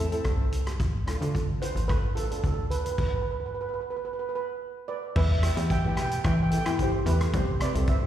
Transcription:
Already playing: analog synth bass E2
0.11 nylon-string guitar C4 E4 A4, closed hi-hat
0.25 analog synth bass C2, kick, cross-stick, closed hi-hat
0.52 closed hi-hat
0.67 cross-stick, closed hi-hat
0.80 analog synth bass D2, kick, closed hi-hat
1.06 nylon-string guitar D4 F4 A4, cross-stick, closed hi-hat
1.20 analog synth bass D2, nylon-string guitar D4 F4 A4, closed hi-hat
1.35 kick, closed hi-hat
1.60 nylon-string guitar D4 F4 B4, steel pan C5, closed hi-hat
1.75 analog synth bass A1, closed hi-hat
1.87 nylon-string guitar D4 F4 A4, steel pan B4, kick, cross-stick, closed hi-hat
2.15 nylon-string guitar D4 F4 A4, steel pan A4, closed hi-hat
2.24 steel pan A4
2.31 nylon-string guitar D4 F4 A4, steel pan A4, closed hi-hat
2.39 steel pan A4
2.43 analog synth bass D2, steel pan A4, kick, closed hi-hat
2.54 steel pan A4
2.71 steel pan B4, closed hi-hat
2.77 steel pan B4
2.85 steel pan B4, closed hi-hat
2.92 steel pan B4
2.98 steel pan B4, kick, crash
3.07 steel pan B4
3.15 steel pan B4
3.21 steel pan B4
3.31 steel pan B4
3.40 steel pan B4
3.46 steel pan B4
3.54 steel pan B4
3.61 steel pan B4
3.69 steel pan B4
3.74 steel pan B4
3.81 steel pan B4
3.90 steel pan B4
3.96 steel pan B4
4.05 steel pan B4
4.13 steel pan B4
4.19 steel pan B4
4.29 steel pan B4
4.35 steel pan B4
4.88 steel pan B4 D5
5.16 analog synth bass E2, steel pan B4 E5, kick, crash
5.24 steel pan E5
5.32 steel pan E5
5.38 steel pan E5
5.42 nylon-string guitar B3 E4 G4, cross-stick, closed hi-hat
5.46 steel pan E5
5.55 analog synth bass E2, nylon-string guitar B3 E4 G4, steel pan E5, closed hi-hat
5.70 steel pan E5 G5, kick, closed hi-hat
5.79 steel pan G5
5.84 nylon-string guitar B3 E4 G4, steel pan G5
5.96 analog synth bass B1, steel pan G5, cross-stick, closed hi-hat
6.02 steel pan G5
6.10 steel pan G5, closed hi-hat
6.24 analog synth bass E3, steel pan E5 G5, kick, cross-stick, closed hi-hat
6.34 steel pan G5
6.42 steel pan G5
6.50 nylon-string guitar B3 E4 A4, steel pan G5, closed hi-hat
6.57 steel pan G5
6.64 analog synth bass E3, nylon-string guitar B3 E4 G4, steel pan G5, cross-stick, closed hi-hat
6.79 steel pan C5, kick, closed hi-hat
6.84 steel pan G4
7.04 analog synth bass E2, nylon-string guitar B3 E4 A4, closed hi-hat
7.08 steel pan G4 B4
7.21 cross-stick, closed hi-hat
7.33 analog synth bass C2, steel pan C5, kick, closed hi-hat
7.38 steel pan G4
7.59 nylon-string guitar C4 E4 G4, steel pan D5, cross-stick, closed hi-hat
7.64 steel pan B4
7.73 analog synth bass C2, nylon-string guitar C4 E4 A4, closed hi-hat
7.87 steel pan C5 E5, kick, closed hi-hat
8.01 nylon-string guitar C4 E4 G4

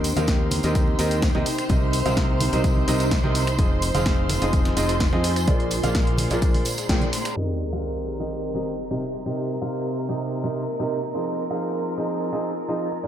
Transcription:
Already playing: fingered electric bass D#2, ambient pad D#4 A#4, violin section C5 C6
0.04 ambient pad C5, closed hi-hat, open hi-hat, tambourine
0.16 fingered electric bass D#2, upright piano D#3 C4 D#4 G4 A#4 F5, ambient pad G5, closed hi-hat, tambourine, high conga
0.27 kick, snare, closed hi-hat, tambourine
0.51 snare, closed hi-hat, open hi-hat, tambourine, high conga
0.63 fingered electric bass D#2, upright piano D#3 C4 D#4 G4 A#4 D#5, snare, closed hi-hat, tambourine
0.75 kick, closed hi-hat, tambourine
0.88 high conga
0.99 fingered electric bass D#2, upright piano D#3 C4 D#4 G4 A#4 D#5, open hi-hat, tambourine
1.11 closed hi-hat, tambourine
1.22 kick, snare, closed hi-hat, tambourine
1.35 fingered electric bass D#2, upright piano C3 C4 D#4 G4 A#4 D#5, snare, high conga
1.46 snare, closed hi-hat, open hi-hat, tambourine
1.58 finger snap, snare, closed hi-hat, tambourine
1.69 fingered electric bass C2, upright piano C3 C4 D#4 G4 A#4 D#5, kick, closed hi-hat, tambourine, high conga
1.93 ambient pad A#5, closed hi-hat, open hi-hat, tambourine
2.06 fingered electric bass C2, upright piano C3 C4 D#4 G4 A#4 F5, closed hi-hat, tambourine, high conga
2.17 kick, snare, closed hi-hat, tambourine
2.40 closed hi-hat, open hi-hat, tambourine, high conga
2.53 fingered electric bass C2, upright piano C3 C4 D#4 G4 A#4 D#5, snare, closed hi-hat, tambourine
2.64 kick, closed hi-hat, tambourine
2.76 high conga
2.88 fingered electric bass C2, upright piano C3 C4 D#4 G4 A#4 D#5, closed hi-hat, open hi-hat, tambourine
3.00 snare, closed hi-hat, tambourine
3.11 kick, snare, closed hi-hat
3.23 fingered electric bass C2, upright piano C3 C4 D#4 G4 A#4 D#5, high conga
3.35 closed hi-hat, open hi-hat, tambourine
3.47 finger snap, closed hi-hat, tambourine
3.59 fingered electric bass F1, upright piano F3 C4 D#4 F4 G#4 D#5, ambient pad F4, kick, closed hi-hat, tambourine, high conga
3.78 ambient pad G#5
3.82 closed hi-hat, open hi-hat, tambourine
3.95 fingered electric bass F1, upright piano F3 C4 D#4 F4 G#4 F5, ambient pad D#5, closed hi-hat, tambourine, high conga
4.06 kick, snare, closed hi-hat
4.29 snare, closed hi-hat, open hi-hat, tambourine, high conga
4.42 fingered electric bass F1, upright piano F3 C4 D#4 F4 G#4 D#5, snare, closed hi-hat, tambourine
4.53 kick, snare, closed hi-hat, tambourine
4.65 snare, closed hi-hat, high conga
4.77 fingered electric bass F1, upright piano F3 C4 D#4 F4 G#4 D#5, snare, open hi-hat, tambourine
4.89 snare, closed hi-hat, tambourine
5.00 kick, snare, closed hi-hat, tambourine
5.13 fingered electric bass F2, upright piano F3 C4 D#4 F4 G#4 D#5, snare, high conga
5.24 snare, closed hi-hat, open hi-hat, tambourine
5.36 finger snap, snare, closed hi-hat, tambourine
5.47 fingered electric bass A#1, upright piano A#2 A#3 D4 F4 G#4 D5, ambient pad G#4, kick, closed hi-hat, tambourine, high conga
5.60 ambient pad A#5, closed hi-hat
5.71 closed hi-hat, open hi-hat, tambourine
5.83 fingered electric bass A#1, upright piano A#2 A#3 D4 F4 G#4 F5, ambient pad D5, closed hi-hat, tambourine, high conga
5.95 kick, snare, closed hi-hat, tambourine
6.07 closed hi-hat
6.17 snare, closed hi-hat, open hi-hat, tambourine, high conga
6.30 fingered electric bass A#1, upright piano A#2 A#3 D4 F4 G#4 D5, snare, closed hi-hat, tambourine
6.42 kick, closed hi-hat, tambourine
6.54 open hi-hat, high conga
6.65 closed hi-hat, open hi-hat, tambourine
6.77 snare, closed hi-hat, tambourine
6.89 fingered electric bass A#1, upright piano A#2 A#3 D4 F4 G#4 G5, kick, snare, closed hi-hat
7.01 closed hi-hat, high conga
7.13 snare, closed hi-hat, open hi-hat, tambourine
7.25 finger snap, snare, closed hi-hat, tambourine
7.37 upright piano D#3 C4 D#4 G4 A#4 D#5, ambient pad G4, violin section A#4 A#5, sub drop
7.62 ambient pad D#5
7.73 upright piano D#3 C4 D#4 G4 A#4 F5
7.98 ambient pad C6
8.20 upright piano D#3 C4 D#4 G4 A#4 D#5
8.55 upright piano D#3 C4 D#4 G4 A#4 D#5
8.91 upright piano C3 C4 D#4 G4 A#4 D#5
9.02 ambient pad A#4
9.14 finger snap
9.26 upright piano C3 C4 D#4 G4 A#4 D#5
9.62 upright piano C3 C4 D#4 G4 A#4 F5
10.09 upright piano C3 C4 D#4 G4 A#4 D#5
10.44 upright piano C3 C4 D#4 G4 A#4 D#5
10.80 upright piano C3 C4 D#4 G4 A#4 D#5
11.03 finger snap
11.15 upright piano F3 C4 D#4 F4 G#4 D#5, ambient pad F4
11.50 upright piano F3 C4 D#4 F4 G#4 F5
11.92 ambient pad G#5
11.98 upright piano F3 C4 D#4 F4 G#4 D#5
12.33 upright piano F3 C4 D#4 F4 G#4 D#5
12.56 closed hi-hat
12.69 upright piano F3 C4 D#4 F4 G#4 D#5
12.92 finger snap
13.03 upright piano A#2 A#3 D4 F4 G#4 D5, ambient pad D4

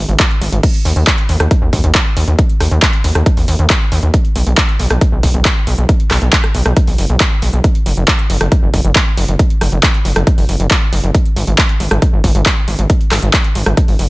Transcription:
0.09 analog synth bass G#1, closed hi-hat
0.20 kick, clap, closed hi-hat
0.31 closed hi-hat
0.41 analog synth bass G#1, open hi-hat
0.52 analog synth bass G#1, closed hi-hat
0.63 kick, closed hi-hat, crash
0.74 closed hi-hat
0.85 analog synth bass D#2, open hi-hat
0.96 analog synth bass D#2, closed hi-hat
1.07 kick, clap, closed hi-hat
1.18 closed hi-hat
1.29 analog synth bass D#2, open hi-hat
1.40 analog synth bass D#2, cross-stick, closed hi-hat
1.51 kick, closed hi-hat
1.62 analog synth bass D#2
1.73 analog synth bass D#2, kick, open hi-hat
1.84 analog synth bass D#2, closed hi-hat
1.95 kick, clap, closed hi-hat
2.17 analog synth bass D#2, open hi-hat
2.28 analog synth bass D#2, closed hi-hat
2.39 kick, closed hi-hat
2.49 closed hi-hat
2.60 analog synth bass D#2, cross-stick, open hi-hat
2.71 analog synth bass D#2, closed hi-hat
2.82 kick, clap, closed hi-hat
2.93 closed hi-hat
3.04 analog synth bass D#2, open hi-hat
3.15 analog synth bass D#2, cross-stick, closed hi-hat
3.26 kick, closed hi-hat
3.37 analog synth bass D#2, open hi-hat
3.48 analog synth bass D#2, open hi-hat
3.59 analog synth bass D#2, closed hi-hat
3.70 kick, clap, closed hi-hat
3.92 analog synth bass D#2, open hi-hat
4.03 analog synth bass D#2, closed hi-hat
4.14 kick, closed hi-hat
4.25 closed hi-hat
4.36 analog synth bass B1, open hi-hat
4.47 analog synth bass B1, closed hi-hat
4.58 kick, clap, closed hi-hat
4.69 closed hi-hat
4.79 analog synth bass B1, open hi-hat
4.90 analog synth bass B1, cross-stick, closed hi-hat
5.01 kick, closed hi-hat
5.12 analog synth bass B1
5.23 analog synth bass B1, kick, open hi-hat
5.34 analog synth bass B1, closed hi-hat
5.45 kick, clap, closed hi-hat
5.67 analog synth bass B1, open hi-hat
5.78 analog synth bass B1, closed hi-hat
5.89 kick, closed hi-hat
6.00 closed hi-hat
6.11 analog synth bass B1, cross-stick, clap, open hi-hat
6.22 analog synth bass B1, closed hi-hat
6.33 kick, clap, closed hi-hat
6.44 cross-stick, closed hi-hat
6.55 analog synth bass B1, open hi-hat
6.66 analog synth bass B1, cross-stick, closed hi-hat
6.76 kick, closed hi-hat
6.87 analog synth bass B1, open hi-hat
6.98 analog synth bass F#1, open hi-hat
7.09 analog synth bass B1, closed hi-hat
7.20 kick, clap, closed hi-hat
7.42 analog synth bass B1, open hi-hat
7.53 analog synth bass B1, closed hi-hat
7.64 kick, closed hi-hat
7.75 closed hi-hat
7.86 analog synth bass F#1, open hi-hat
7.97 analog synth bass F#1, closed hi-hat
8.08 kick, clap, closed hi-hat
8.19 closed hi-hat
8.30 analog synth bass F#1, open hi-hat
8.41 analog synth bass F#1, cross-stick, closed hi-hat
8.52 kick, closed hi-hat
8.63 analog synth bass F#1
8.74 analog synth bass F#1, kick, open hi-hat
8.85 analog synth bass F#1, closed hi-hat
8.96 kick, clap, closed hi-hat
9.17 analog synth bass F#1, open hi-hat
9.28 analog synth bass F#1, closed hi-hat
9.39 kick, closed hi-hat
9.50 closed hi-hat
9.61 analog synth bass F#1, cross-stick, open hi-hat
9.72 analog synth bass F#1, closed hi-hat
9.83 kick, clap, closed hi-hat
9.94 closed hi-hat
10.05 analog synth bass F#1, open hi-hat
10.16 analog synth bass F#1, cross-stick, closed hi-hat
10.27 kick, closed hi-hat
10.38 analog synth bass F#1, open hi-hat
10.49 analog synth bass F#1, open hi-hat
10.60 analog synth bass F#1, closed hi-hat
10.71 kick, clap, closed hi-hat
10.93 analog synth bass F#1, open hi-hat
11.04 analog synth bass F#1, closed hi-hat
11.15 kick, closed hi-hat
11.26 closed hi-hat
11.36 analog synth bass G#1, open hi-hat
11.47 analog synth bass G#1, closed hi-hat
11.58 kick, clap, closed hi-hat
11.69 closed hi-hat
11.80 analog synth bass G#1, open hi-hat
11.91 analog synth bass G#1, cross-stick, closed hi-hat
12.02 kick, closed hi-hat
12.13 analog synth bass G#1
12.24 analog synth bass G#1, kick, open hi-hat
12.35 analog synth bass G#1, closed hi-hat
12.46 kick, clap, closed hi-hat
12.68 analog synth bass G#1, open hi-hat
12.79 analog synth bass G#1, closed hi-hat
12.90 kick, closed hi-hat
13.01 closed hi-hat
13.11 analog synth bass G#1, cross-stick, clap, open hi-hat
13.22 analog synth bass G#1, closed hi-hat
13.33 kick, clap, closed hi-hat
13.44 closed hi-hat
13.55 analog synth bass G#1, open hi-hat
13.66 analog synth bass G#1, cross-stick, closed hi-hat
13.77 kick, closed hi-hat
13.88 analog synth bass G#1, open hi-hat
13.99 analog synth bass F#1, open hi-hat

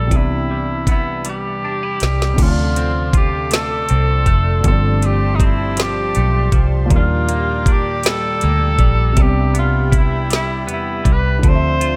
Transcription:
Already playing: fingered electric bass A#1, clean electric guitar D#3 G3 A#3 D4, tenor saxophone A4
0.07 grand piano C3 E3
0.11 fingered electric bass C2, clean electric guitar C3, grand piano G3 B3, kick, closed hi-hat
0.16 grand piano D4, tenor saxophone E4
0.51 clean electric guitar G3
0.87 clean electric guitar B3, kick, closed hi-hat
0.91 tenor saxophone E4
1.25 clean electric guitar G3, closed hi-hat
1.29 tenor saxophone G4
1.64 fingered electric bass E2, clean electric guitar D4
1.83 clean electric guitar E4
2.00 fingered electric bass C2, clean electric guitar G3, snare, closed hi-hat
2.22 snare
2.33 grand piano C3 D3
2.38 fingered electric bass D2, clean electric guitar D3, grand piano F3 A3, analog synth pad A4 D5 C6 D6, kick, closed hi-hat, crash
2.42 grand piano C#4, tenor saxophone F4
2.50 grand piano D4
2.76 clean electric guitar C4, closed hi-hat
3.13 clean electric guitar F4, tenor saxophone G4, kick, closed hi-hat
3.51 clean electric guitar A3, tenor saxophone A4, snare, closed hi-hat
3.89 fingered electric bass C2, clean electric guitar C4, closed hi-hat
4.26 fingered electric bass F1, clean electric guitar A3, kick, closed hi-hat
4.61 clean electric guitar G2, grand piano B2 F3, analog synth pad G4 A5, kick, closed hi-hat
4.65 fingered electric bass G1, grand piano G3 A3 C4, tenor saxophone A4
4.71 grand piano D4
5.02 clean electric guitar A3, tenor saxophone G4, closed hi-hat
5.35 tenor saxophone D#4
5.40 clean electric guitar C4, kick, closed hi-hat
5.45 tenor saxophone E4
5.77 clean electric guitar F3, snare, closed hi-hat
5.83 tenor saxophone G4
6.15 fingered electric bass B1, clean electric guitar A3, closed hi-hat
6.52 fingered electric bass C2, clean electric guitar F3, kick, closed hi-hat
6.86 grand piano A#2 F3
6.90 fingered electric bass D#2, clean electric guitar D#3, grand piano G3 A#3, analog synth pad D5 G5 D6, kick, closed hi-hat
6.96 grand piano D4, tenor saxophone F4
7.29 clean electric guitar A#3, closed hi-hat
7.66 clean electric guitar D4, kick, closed hi-hat
7.72 tenor saxophone G4
8.03 clean electric guitar G3, snare, closed hi-hat
8.09 tenor saxophone A4
8.41 fingered electric bass D2, clean electric guitar A#3, closed hi-hat
8.79 fingered electric bass A#1, clean electric guitar G3, kick, closed hi-hat
9.12 grand piano C3
9.17 fingered electric bass C2, clean electric guitar C3, grand piano G3 B3, analog synth pad G4 E5 G5 B5, kick, closed hi-hat
9.22 grand piano C4, tenor saxophone G4
9.29 grand piano D4
9.54 clean electric guitar B3, closed hi-hat
9.59 tenor saxophone F4
9.92 clean electric guitar E4, kick, closed hi-hat
9.98 tenor saxophone E4
10.30 clean electric guitar G3, snare, closed hi-hat
10.36 tenor saxophone E4
10.67 fingered electric bass E2, clean electric guitar B3, closed hi-hat
10.73 tenor saxophone E4
11.04 fingered electric bass C2, clean electric guitar G3, kick, closed hi-hat
11.12 tenor saxophone B4
11.39 grand piano D3 F3, tenor saxophone B4
11.43 fingered electric bass D2, clean electric guitar D3, grand piano A3 C4, analog synth pad F4 D5 A5, kick, closed hi-hat
11.49 grand piano D4, tenor saxophone C5
11.55 grand piano E5
11.81 clean electric guitar F4, closed hi-hat

